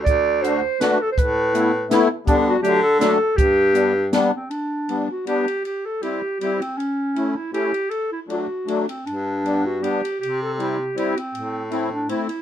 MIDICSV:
0, 0, Header, 1, 5, 480
1, 0, Start_track
1, 0, Key_signature, 1, "major"
1, 0, Tempo, 369914
1, 74, Time_signature, 3, 2, 24, 8
1, 5354, Tempo, 379507
1, 15843, End_track
2, 0, Start_track
2, 0, Title_t, "Clarinet"
2, 0, Program_c, 0, 71
2, 49, Note_on_c, 0, 74, 85
2, 546, Note_on_c, 0, 72, 80
2, 566, Note_off_c, 0, 74, 0
2, 1043, Note_on_c, 0, 71, 76
2, 1062, Note_off_c, 0, 72, 0
2, 1311, Note_on_c, 0, 69, 85
2, 1331, Note_off_c, 0, 71, 0
2, 1441, Note_off_c, 0, 69, 0
2, 1450, Note_on_c, 0, 72, 65
2, 1541, Note_on_c, 0, 71, 81
2, 1560, Note_off_c, 0, 72, 0
2, 2481, Note_off_c, 0, 71, 0
2, 2959, Note_on_c, 0, 62, 80
2, 3072, Note_off_c, 0, 62, 0
2, 3215, Note_on_c, 0, 66, 83
2, 3399, Note_off_c, 0, 66, 0
2, 3407, Note_on_c, 0, 67, 83
2, 3653, Note_off_c, 0, 67, 0
2, 3663, Note_on_c, 0, 69, 89
2, 3875, Note_off_c, 0, 69, 0
2, 3888, Note_on_c, 0, 69, 89
2, 4366, Note_on_c, 0, 67, 87
2, 4385, Note_off_c, 0, 69, 0
2, 5344, Note_off_c, 0, 67, 0
2, 5615, Note_on_c, 0, 60, 55
2, 5828, Note_on_c, 0, 62, 51
2, 5847, Note_off_c, 0, 60, 0
2, 6577, Note_off_c, 0, 62, 0
2, 6596, Note_on_c, 0, 66, 56
2, 6789, Note_off_c, 0, 66, 0
2, 6796, Note_on_c, 0, 67, 68
2, 7244, Note_off_c, 0, 67, 0
2, 7282, Note_on_c, 0, 67, 54
2, 7541, Note_on_c, 0, 69, 59
2, 7560, Note_off_c, 0, 67, 0
2, 7751, Note_on_c, 0, 67, 57
2, 7770, Note_off_c, 0, 69, 0
2, 8224, Note_off_c, 0, 67, 0
2, 8232, Note_on_c, 0, 67, 63
2, 8498, Note_on_c, 0, 60, 58
2, 8517, Note_off_c, 0, 67, 0
2, 8702, Note_on_c, 0, 61, 60
2, 8721, Note_off_c, 0, 60, 0
2, 9444, Note_on_c, 0, 64, 63
2, 9463, Note_off_c, 0, 61, 0
2, 9653, Note_off_c, 0, 64, 0
2, 9661, Note_on_c, 0, 67, 70
2, 10126, Note_on_c, 0, 69, 64
2, 10145, Note_off_c, 0, 67, 0
2, 10393, Note_off_c, 0, 69, 0
2, 10406, Note_on_c, 0, 64, 59
2, 10504, Note_off_c, 0, 64, 0
2, 10603, Note_on_c, 0, 66, 57
2, 11315, Note_off_c, 0, 66, 0
2, 11373, Note_on_c, 0, 60, 55
2, 11594, Note_on_c, 0, 62, 68
2, 11613, Note_off_c, 0, 60, 0
2, 12354, Note_on_c, 0, 66, 66
2, 12373, Note_off_c, 0, 62, 0
2, 12567, Note_on_c, 0, 67, 69
2, 12586, Note_off_c, 0, 66, 0
2, 13029, Note_off_c, 0, 67, 0
2, 13036, Note_on_c, 0, 67, 66
2, 13309, Note_on_c, 0, 69, 65
2, 13328, Note_off_c, 0, 67, 0
2, 13448, Note_off_c, 0, 69, 0
2, 13453, Note_on_c, 0, 69, 46
2, 13558, Note_on_c, 0, 67, 61
2, 13577, Note_off_c, 0, 69, 0
2, 14007, Note_off_c, 0, 67, 0
2, 14014, Note_on_c, 0, 67, 65
2, 14271, Note_on_c, 0, 60, 65
2, 14290, Note_off_c, 0, 67, 0
2, 14863, Note_off_c, 0, 60, 0
2, 15206, Note_on_c, 0, 62, 61
2, 15427, Note_on_c, 0, 64, 68
2, 15446, Note_off_c, 0, 62, 0
2, 15665, Note_off_c, 0, 64, 0
2, 15673, Note_on_c, 0, 64, 64
2, 15843, Note_off_c, 0, 64, 0
2, 15843, End_track
3, 0, Start_track
3, 0, Title_t, "Accordion"
3, 0, Program_c, 1, 21
3, 555, Note_on_c, 1, 57, 52
3, 559, Note_on_c, 1, 62, 45
3, 562, Note_on_c, 1, 66, 52
3, 789, Note_off_c, 1, 57, 0
3, 792, Note_off_c, 1, 62, 0
3, 793, Note_off_c, 1, 66, 0
3, 1041, Note_on_c, 1, 57, 62
3, 1043, Note_on_c, 1, 62, 60
3, 1051, Note_on_c, 1, 66, 70
3, 1272, Note_off_c, 1, 57, 0
3, 1274, Note_off_c, 1, 62, 0
3, 1278, Note_off_c, 1, 66, 0
3, 1989, Note_on_c, 1, 57, 53
3, 1994, Note_on_c, 1, 59, 44
3, 1997, Note_on_c, 1, 64, 58
3, 2223, Note_off_c, 1, 57, 0
3, 2225, Note_off_c, 1, 59, 0
3, 2227, Note_off_c, 1, 64, 0
3, 2466, Note_on_c, 1, 57, 81
3, 2466, Note_on_c, 1, 59, 66
3, 2475, Note_on_c, 1, 64, 96
3, 2698, Note_off_c, 1, 57, 0
3, 2698, Note_off_c, 1, 59, 0
3, 2703, Note_off_c, 1, 64, 0
3, 2937, Note_on_c, 1, 55, 67
3, 2941, Note_on_c, 1, 59, 60
3, 2948, Note_on_c, 1, 62, 73
3, 3328, Note_off_c, 1, 55, 0
3, 3330, Note_off_c, 1, 59, 0
3, 3334, Note_off_c, 1, 62, 0
3, 3398, Note_on_c, 1, 54, 54
3, 3399, Note_on_c, 1, 57, 55
3, 3404, Note_on_c, 1, 62, 55
3, 3641, Note_off_c, 1, 54, 0
3, 3642, Note_off_c, 1, 57, 0
3, 3645, Note_off_c, 1, 62, 0
3, 3882, Note_on_c, 1, 54, 67
3, 3886, Note_on_c, 1, 57, 57
3, 3888, Note_on_c, 1, 62, 75
3, 4126, Note_off_c, 1, 54, 0
3, 4128, Note_off_c, 1, 57, 0
3, 4129, Note_off_c, 1, 62, 0
3, 4845, Note_on_c, 1, 55, 54
3, 4851, Note_on_c, 1, 59, 46
3, 4862, Note_on_c, 1, 62, 55
3, 5091, Note_off_c, 1, 55, 0
3, 5094, Note_off_c, 1, 59, 0
3, 5100, Note_off_c, 1, 62, 0
3, 5348, Note_on_c, 1, 59, 63
3, 5352, Note_on_c, 1, 55, 66
3, 5356, Note_on_c, 1, 62, 76
3, 5585, Note_off_c, 1, 59, 0
3, 5587, Note_off_c, 1, 55, 0
3, 5589, Note_off_c, 1, 62, 0
3, 6328, Note_on_c, 1, 59, 40
3, 6329, Note_on_c, 1, 55, 38
3, 6338, Note_on_c, 1, 62, 43
3, 6559, Note_off_c, 1, 59, 0
3, 6560, Note_off_c, 1, 55, 0
3, 6564, Note_off_c, 1, 62, 0
3, 6790, Note_on_c, 1, 55, 49
3, 6798, Note_on_c, 1, 59, 44
3, 6803, Note_on_c, 1, 62, 54
3, 7029, Note_off_c, 1, 55, 0
3, 7033, Note_off_c, 1, 59, 0
3, 7036, Note_off_c, 1, 62, 0
3, 7747, Note_on_c, 1, 55, 40
3, 7761, Note_on_c, 1, 60, 38
3, 7763, Note_on_c, 1, 64, 44
3, 7987, Note_off_c, 1, 55, 0
3, 7995, Note_off_c, 1, 60, 0
3, 7995, Note_off_c, 1, 64, 0
3, 8244, Note_on_c, 1, 55, 48
3, 8257, Note_on_c, 1, 60, 40
3, 8260, Note_on_c, 1, 64, 51
3, 8475, Note_off_c, 1, 55, 0
3, 8481, Note_off_c, 1, 60, 0
3, 8482, Note_off_c, 1, 64, 0
3, 9197, Note_on_c, 1, 57, 41
3, 9197, Note_on_c, 1, 64, 48
3, 9200, Note_on_c, 1, 61, 37
3, 9425, Note_off_c, 1, 57, 0
3, 9425, Note_off_c, 1, 64, 0
3, 9426, Note_off_c, 1, 61, 0
3, 9653, Note_on_c, 1, 57, 52
3, 9665, Note_on_c, 1, 61, 47
3, 9665, Note_on_c, 1, 64, 57
3, 9891, Note_off_c, 1, 57, 0
3, 9897, Note_off_c, 1, 61, 0
3, 9897, Note_off_c, 1, 64, 0
3, 10604, Note_on_c, 1, 54, 36
3, 10606, Note_on_c, 1, 57, 34
3, 10611, Note_on_c, 1, 62, 44
3, 10849, Note_off_c, 1, 54, 0
3, 10850, Note_off_c, 1, 57, 0
3, 10852, Note_off_c, 1, 62, 0
3, 11086, Note_on_c, 1, 54, 47
3, 11097, Note_on_c, 1, 57, 43
3, 11098, Note_on_c, 1, 62, 54
3, 11337, Note_off_c, 1, 54, 0
3, 11342, Note_off_c, 1, 57, 0
3, 11342, Note_off_c, 1, 62, 0
3, 12090, Note_on_c, 1, 55, 40
3, 12095, Note_on_c, 1, 62, 45
3, 12096, Note_on_c, 1, 59, 37
3, 12324, Note_off_c, 1, 55, 0
3, 12327, Note_off_c, 1, 59, 0
3, 12327, Note_off_c, 1, 62, 0
3, 12547, Note_on_c, 1, 55, 49
3, 12550, Note_on_c, 1, 59, 44
3, 12562, Note_on_c, 1, 62, 54
3, 12795, Note_off_c, 1, 55, 0
3, 12796, Note_off_c, 1, 59, 0
3, 12802, Note_off_c, 1, 62, 0
3, 13518, Note_on_c, 1, 55, 46
3, 13528, Note_on_c, 1, 60, 38
3, 13530, Note_on_c, 1, 64, 47
3, 13756, Note_off_c, 1, 55, 0
3, 13762, Note_off_c, 1, 60, 0
3, 13762, Note_off_c, 1, 64, 0
3, 13993, Note_on_c, 1, 55, 56
3, 13995, Note_on_c, 1, 60, 44
3, 14002, Note_on_c, 1, 64, 57
3, 14232, Note_off_c, 1, 55, 0
3, 14233, Note_off_c, 1, 60, 0
3, 14236, Note_off_c, 1, 64, 0
3, 14941, Note_on_c, 1, 57, 46
3, 14947, Note_on_c, 1, 60, 43
3, 14958, Note_on_c, 1, 64, 57
3, 15180, Note_off_c, 1, 57, 0
3, 15183, Note_off_c, 1, 60, 0
3, 15189, Note_off_c, 1, 64, 0
3, 15423, Note_on_c, 1, 57, 47
3, 15428, Note_on_c, 1, 60, 45
3, 15433, Note_on_c, 1, 64, 53
3, 15660, Note_off_c, 1, 57, 0
3, 15662, Note_off_c, 1, 60, 0
3, 15665, Note_off_c, 1, 64, 0
3, 15843, End_track
4, 0, Start_track
4, 0, Title_t, "Baritone saxophone"
4, 0, Program_c, 2, 67
4, 84, Note_on_c, 2, 38, 78
4, 799, Note_off_c, 2, 38, 0
4, 1531, Note_on_c, 2, 45, 86
4, 2453, Note_off_c, 2, 45, 0
4, 2952, Note_on_c, 2, 50, 87
4, 3258, Note_off_c, 2, 50, 0
4, 3433, Note_on_c, 2, 50, 97
4, 4055, Note_off_c, 2, 50, 0
4, 4381, Note_on_c, 2, 43, 78
4, 5334, Note_off_c, 2, 43, 0
4, 11601, Note_on_c, 2, 43, 67
4, 12546, Note_off_c, 2, 43, 0
4, 13048, Note_on_c, 2, 48, 68
4, 13979, Note_off_c, 2, 48, 0
4, 14481, Note_on_c, 2, 45, 66
4, 15410, Note_off_c, 2, 45, 0
4, 15843, End_track
5, 0, Start_track
5, 0, Title_t, "Drums"
5, 84, Note_on_c, 9, 36, 67
5, 92, Note_on_c, 9, 42, 38
5, 214, Note_off_c, 9, 36, 0
5, 222, Note_off_c, 9, 42, 0
5, 576, Note_on_c, 9, 42, 39
5, 705, Note_off_c, 9, 42, 0
5, 1052, Note_on_c, 9, 38, 59
5, 1052, Note_on_c, 9, 42, 42
5, 1182, Note_off_c, 9, 38, 0
5, 1182, Note_off_c, 9, 42, 0
5, 1527, Note_on_c, 9, 36, 69
5, 1537, Note_on_c, 9, 42, 40
5, 1657, Note_off_c, 9, 36, 0
5, 1667, Note_off_c, 9, 42, 0
5, 2009, Note_on_c, 9, 42, 39
5, 2139, Note_off_c, 9, 42, 0
5, 2481, Note_on_c, 9, 38, 60
5, 2481, Note_on_c, 9, 42, 47
5, 2611, Note_off_c, 9, 38, 0
5, 2611, Note_off_c, 9, 42, 0
5, 2951, Note_on_c, 9, 36, 69
5, 2955, Note_on_c, 9, 42, 43
5, 3081, Note_off_c, 9, 36, 0
5, 3085, Note_off_c, 9, 42, 0
5, 3433, Note_on_c, 9, 42, 36
5, 3562, Note_off_c, 9, 42, 0
5, 3908, Note_on_c, 9, 38, 54
5, 3908, Note_on_c, 9, 42, 49
5, 4038, Note_off_c, 9, 38, 0
5, 4038, Note_off_c, 9, 42, 0
5, 4388, Note_on_c, 9, 36, 75
5, 4392, Note_on_c, 9, 42, 40
5, 4518, Note_off_c, 9, 36, 0
5, 4522, Note_off_c, 9, 42, 0
5, 4866, Note_on_c, 9, 42, 38
5, 4996, Note_off_c, 9, 42, 0
5, 5358, Note_on_c, 9, 38, 62
5, 5358, Note_on_c, 9, 42, 42
5, 5484, Note_off_c, 9, 38, 0
5, 5484, Note_off_c, 9, 42, 0
5, 5837, Note_on_c, 9, 51, 28
5, 5964, Note_off_c, 9, 51, 0
5, 6318, Note_on_c, 9, 51, 30
5, 6445, Note_off_c, 9, 51, 0
5, 6800, Note_on_c, 9, 51, 34
5, 6927, Note_off_c, 9, 51, 0
5, 7065, Note_on_c, 9, 51, 31
5, 7192, Note_off_c, 9, 51, 0
5, 7282, Note_on_c, 9, 51, 29
5, 7409, Note_off_c, 9, 51, 0
5, 7758, Note_on_c, 9, 51, 29
5, 7885, Note_off_c, 9, 51, 0
5, 8246, Note_on_c, 9, 51, 36
5, 8373, Note_off_c, 9, 51, 0
5, 8506, Note_on_c, 9, 51, 31
5, 8633, Note_off_c, 9, 51, 0
5, 8736, Note_on_c, 9, 51, 26
5, 8863, Note_off_c, 9, 51, 0
5, 9195, Note_on_c, 9, 51, 31
5, 9321, Note_off_c, 9, 51, 0
5, 9675, Note_on_c, 9, 51, 34
5, 9802, Note_off_c, 9, 51, 0
5, 9927, Note_on_c, 9, 51, 29
5, 10054, Note_off_c, 9, 51, 0
5, 10143, Note_on_c, 9, 51, 24
5, 10270, Note_off_c, 9, 51, 0
5, 10633, Note_on_c, 9, 51, 28
5, 10759, Note_off_c, 9, 51, 0
5, 11118, Note_on_c, 9, 51, 34
5, 11245, Note_off_c, 9, 51, 0
5, 11380, Note_on_c, 9, 51, 31
5, 11506, Note_off_c, 9, 51, 0
5, 11609, Note_on_c, 9, 51, 28
5, 11735, Note_off_c, 9, 51, 0
5, 12095, Note_on_c, 9, 51, 29
5, 12222, Note_off_c, 9, 51, 0
5, 12580, Note_on_c, 9, 51, 37
5, 12706, Note_off_c, 9, 51, 0
5, 12845, Note_on_c, 9, 51, 36
5, 12972, Note_off_c, 9, 51, 0
5, 13077, Note_on_c, 9, 51, 31
5, 13204, Note_off_c, 9, 51, 0
5, 13543, Note_on_c, 9, 51, 28
5, 13669, Note_off_c, 9, 51, 0
5, 14018, Note_on_c, 9, 51, 34
5, 14144, Note_off_c, 9, 51, 0
5, 14270, Note_on_c, 9, 51, 29
5, 14397, Note_off_c, 9, 51, 0
5, 14489, Note_on_c, 9, 51, 30
5, 14615, Note_off_c, 9, 51, 0
5, 14953, Note_on_c, 9, 51, 29
5, 15080, Note_off_c, 9, 51, 0
5, 15431, Note_on_c, 9, 51, 36
5, 15557, Note_off_c, 9, 51, 0
5, 15680, Note_on_c, 9, 51, 33
5, 15806, Note_off_c, 9, 51, 0
5, 15843, End_track
0, 0, End_of_file